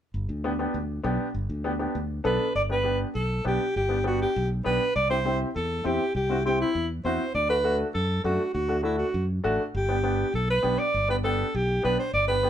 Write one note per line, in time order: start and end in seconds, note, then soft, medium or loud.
0.14 0.26 G1 medium
0.29 0.65 D2 medium
0.44 0.50 B3 medium
0.44 0.50 D4 medium
0.44 0.50 G4 medium
0.59 0.75 B3 medium
0.59 0.75 D4 medium
0.59 0.76 G4 medium
0.74 0.99 D2 medium
1.03 1.17 B1 medium
1.03 1.25 B3 medium
1.03 1.26 D4 medium
1.03 1.26 G4 medium
1.34 1.47 G1 medium
1.50 1.86 D2 medium
1.64 1.70 B3 medium
1.64 1.70 D4 medium
1.64 1.70 G4 medium
1.79 1.96 B3 medium
1.79 1.96 D4 medium
1.79 1.96 G4 medium
1.95 2.19 D2 medium
2.24 2.37 B1 medium
2.24 2.46 B3 medium
2.24 2.46 D4 medium
2.24 2.46 A4 medium
2.24 2.53 B4 medium
2.55 3.03 G1 medium
2.55 2.62 D5 loud
2.69 2.75 B3 medium
2.69 2.75 D4 medium
2.69 2.76 G4 medium
2.69 2.99 B4 medium
2.84 3.06 B3 medium
2.84 3.06 D4 medium
2.84 3.06 G4 medium
3.15 3.39 B1 medium
3.15 3.43 A4 medium
3.45 3.57 B1 medium
3.45 3.61 B3 medium
3.45 3.61 D4 medium
3.45 3.61 G4 medium
3.45 3.74 G4 medium
3.76 4.24 G1 medium
3.76 4.04 G4 medium
3.89 3.95 B3 medium
3.89 3.95 D4 medium
3.89 3.96 G4 medium
4.04 4.26 B3 medium
4.04 4.26 D4 medium
4.04 4.20 F#4 medium
4.04 4.26 G4 medium
4.22 4.49 G4 medium
4.36 4.60 B1 medium
4.64 4.78 B1 medium
4.64 4.81 B3 medium
4.64 4.81 D4 medium
4.64 4.81 G4 medium
4.64 4.93 B4 medium
4.96 5.43 C2 medium
4.96 5.09 D5 medium
5.10 5.15 C4 medium
5.10 5.15 E4 medium
5.10 5.16 G4 medium
5.10 5.38 C5 medium
5.25 5.46 C4 medium
5.25 5.46 E4 medium
5.25 5.46 G4 medium
5.56 5.80 E2 medium
5.56 5.87 A4 medium
5.84 5.97 E2 medium
5.84 6.01 C4 medium
5.84 6.01 E4 medium
5.84 6.01 G4 medium
5.84 6.15 G4 medium
6.15 6.63 C2 medium
6.15 6.43 G4 medium
6.30 6.35 C4 medium
6.30 6.36 E4 medium
6.30 6.36 F#4 medium
6.46 6.66 C4 medium
6.46 6.67 E4 medium
6.46 6.59 G4 medium
6.46 6.67 G4 medium
6.61 6.88 E4 medium
6.75 6.99 E2 medium
7.05 7.17 E2 medium
7.05 7.21 C4 medium
7.05 7.21 E4 medium
7.05 7.21 F#4 medium
7.05 7.33 C5 medium
7.34 7.83 D2 medium
7.34 7.49 D5 medium
7.49 7.55 A3 medium
7.49 7.55 D4 medium
7.49 7.55 F#4 medium
7.49 7.78 B4 medium
7.64 7.85 A3 medium
7.64 7.86 D4 medium
7.64 7.86 F#4 medium
7.94 8.19 F#2 medium
7.94 8.22 A4 medium
8.24 8.37 F#2 medium
8.24 8.40 A3 medium
8.24 8.41 D4 medium
8.24 8.53 F#4 medium
8.24 8.41 F#4 medium
8.54 9.03 D2 medium
8.54 8.82 F#4 medium
8.68 8.74 A3 medium
8.68 8.74 D4 medium
8.68 8.75 F#4 medium
8.83 9.05 A3 medium
8.83 9.05 D4 medium
8.83 8.98 E4 medium
8.83 9.05 F#4 medium
8.98 9.27 F#4 medium
9.14 9.38 F#2 medium
9.44 9.57 A1 medium
9.44 9.60 A3 medium
9.44 9.60 D4 medium
9.44 9.60 F#4 medium
9.74 10.22 G1 medium
9.74 10.31 G4 medium
9.89 9.94 B3 medium
9.89 9.94 D4 medium
9.89 9.95 G4 medium
10.04 10.25 B3 medium
10.04 10.25 D4 medium
10.04 10.25 G4 medium
10.34 10.58 B1 medium
10.34 10.49 A4 medium
10.51 10.80 B4 medium
10.63 10.76 B1 medium
10.63 10.79 B3 medium
10.63 10.79 D4 medium
10.63 10.79 G4 medium
10.79 11.09 D5 loud
10.94 11.42 G1 medium
11.08 11.14 B3 medium
11.08 11.14 D4 medium
11.08 11.14 G4 medium
11.08 11.17 B4 medium
11.24 11.45 B3 medium
11.24 11.45 D4 medium
11.24 11.45 G4 medium
11.24 11.57 A4 medium
11.54 11.78 B1 medium
11.54 11.84 G4 medium
11.83 11.96 B1 medium
11.83 11.99 B3 medium
11.83 11.99 D4 medium
11.83 11.99 G4 medium
11.83 11.98 B4 loud
11.99 12.13 C5 medium
12.13 12.50 G1 medium
12.13 12.27 D5 loud
12.28 12.34 B3 medium
12.28 12.34 D4 medium
12.28 12.34 G4 medium
12.28 12.50 B4 loud
12.43 12.50 B3 medium
12.43 12.50 D4 medium
12.43 12.50 G4 medium